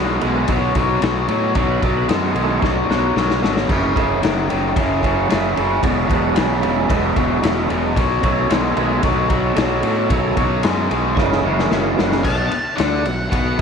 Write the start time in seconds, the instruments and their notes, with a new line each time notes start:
Already playing: fingered electric bass B1, overdriven electric guitar B2 G#3, tonewheel organ B3
0.20 fingered electric bass B1, overdriven electric guitar B2 G#3, tonewheel organ D#3 A3 C#4, ride
0.48 fingered electric bass B1, overdriven electric guitar B2 F#3, kick, ride
0.75 overdriven electric guitar B2 F#3, kick, ride
1.02 fingered electric bass B1, overdriven electric guitar B2 F#3, snare, ride
1.28 fingered electric bass A2, overdriven electric guitar B2 F#3, ride
1.55 fingered electric bass B1, overdriven electric guitar B2 F#3, tonewheel organ D5, kick, ride
1.71 tonewheel organ B4
1.81 fingered electric bass B1, overdriven electric guitar B2 F#3, tonewheel organ D5, kick, ride
1.97 tonewheel organ B4
2.08 fingered electric bass F#2, overdriven electric guitar B2 G#3, tonewheel organ A4, snare, ride
2.23 tonewheel organ F#4
2.35 fingered electric bass B1, overdriven electric guitar B2 G#3, tonewheel organ D#3 A3 C#4 A4, ride
2.48 tonewheel organ F#4
2.61 fingered electric bass B1, overdriven electric guitar B2 F#3, tonewheel organ D4, kick, snare
2.89 fingered electric bass B1, overdriven electric guitar B2 F#3, tonewheel organ B3, snare
3.16 fingered electric bass B1, overdriven electric guitar B2 F#3, snare
3.30 snare
3.43 fingered electric bass G#1, overdriven electric guitar B2 F#3, snare
3.57 snare
3.68 fingered electric bass F#1, overdriven electric guitar F#2 C#3, tonewheel organ E3 G#3 A#3, kick, crash
3.94 fingered electric bass F#1, overdriven electric guitar F#2 C#3, kick, ride
4.22 fingered electric bass F#1, overdriven electric guitar F#2 D#3, snare, ride
4.49 fingered electric bass F#1, overdriven electric guitar F#2 D#3, ride
4.75 fingered electric bass F#1, overdriven electric guitar F#2 C#3, kick, ride
5.02 overdriven electric guitar F#2 C#3, tonewheel organ A4, kick, ride
5.16 tonewheel organ F#4
5.29 fingered electric bass F#1, overdriven electric guitar F#2 C#3, tonewheel organ D4, snare, ride
5.42 tonewheel organ E4
5.55 fingered electric bass F#1, overdriven electric guitar F#2 C#3, tonewheel organ A4, ride
5.70 tonewheel organ F#4
5.82 fingered electric bass E1, overdriven electric guitar E2 B2, tonewheel organ F#3 G#3 D4, kick, ride
5.98 tonewheel organ E4
6.08 fingered electric bass E1, overdriven electric guitar E2 B2, tonewheel organ B4, kick, ride
6.25 tonewheel organ F#4
6.35 fingered electric bass B1, overdriven electric guitar E2 C#3, snare, ride
6.40 tonewheel organ D4
6.52 tonewheel organ E4
6.62 fingered electric bass E1, overdriven electric guitar E2 C#3, ride
6.66 tonewheel organ E4
6.88 fingered electric bass E1, overdriven electric guitar E2 B2, kick, ride
7.16 fingered electric bass E1, overdriven electric guitar E2 B2, kick, ride
7.43 fingered electric bass E1, overdriven electric guitar E2 B2, snare, ride
7.69 fingered electric bass E1, overdriven electric guitar E2 B2, ride
7.96 fingered electric bass B1, overdriven electric guitar B2 F#3, kick, ride
8.23 fingered electric bass B1, overdriven electric guitar B2 F#3, tonewheel organ D#3 A3 C#4, kick, ride
8.50 fingered electric bass B1, overdriven electric guitar B2 G#3, snare, ride
8.74 fingered electric bass B1, overdriven electric guitar B2 G#3, tonewheel organ A#4, ride
8.78 tonewheel organ B4
9.03 fingered electric bass B1, overdriven electric guitar B2 F#3, tonewheel organ D#3 A3 C#4, kick, ride
9.29 overdriven electric guitar B2 F#3, tonewheel organ B4, kick, ride
9.46 tonewheel organ A4
9.56 fingered electric bass B1, overdriven electric guitar B2 F#3, tonewheel organ G#4 A4, snare, ride
9.82 fingered electric bass A2, overdriven electric guitar B2 F#3, ride
10.09 fingered electric bass B1, overdriven electric guitar B2 F#3, tonewheel organ D#3 A3 C#4, kick, ride
10.37 fingered electric bass B1, overdriven electric guitar B2 F#3, kick, ride
10.63 fingered electric bass F#2, overdriven electric guitar B2 G#3, snare, ride
10.90 fingered electric bass B1, overdriven electric guitar B2 G#3, ride
11.15 fingered electric bass F#1, overdriven electric guitar F#2 C#3, tonewheel organ E3 C#5, kick, snare
11.19 tonewheel organ G#3 A#3 D5
11.33 tonewheel organ A4, snare
11.44 fingered electric bass F#1, overdriven electric guitar F#2 C#3, tonewheel organ F#4
11.57 tonewheel organ F4, snare
11.71 fingered electric bass F#1, overdriven electric guitar F#2 C#3, tonewheel organ E4, snare
11.82 tonewheel organ D4
11.96 fingered electric bass F#1, overdriven electric guitar F#2 C#3, tonewheel organ F#3 B3, snare
12.12 snare
12.24 fingered electric bass B1, overdriven electric guitar B2 B3, lead electric guitar A5, kick, crash
12.51 muted overdriven electric guitar stroke, muted fingered electric bass stroke, ride
12.77 fingered electric bass D2, overdriven electric guitar D3 D4, lead electric guitar F#5, snare, ride
13.05 fingered electric bass B1, overdriven electric guitar B2, ride
13.30 fingered electric bass B1, overdriven electric guitar B2 B3, lead electric guitar F#5, kick, ride